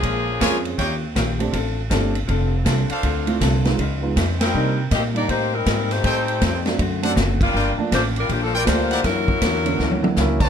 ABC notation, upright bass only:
X:1
M:4/4
L:1/8
Q:"Swing" 1/4=160
K:Gm
V:1 name="Upright bass" clef=bass
B,,,2 F,,2 E,,2 B,,,2 | A,,,2 G,,,2 F,,,2 C,, z | D,,2 C,,2 ^C,,2 ^E,,2 | C,2 B,,2 A,,2 _A,,2 |
A,,2 F,,2 ^F,,2 ^F,,,2 | G,,, z A,,,2 B,,,2 D,,2 | ^F,,2 =E,,2 D,,2 ^C,,2 |]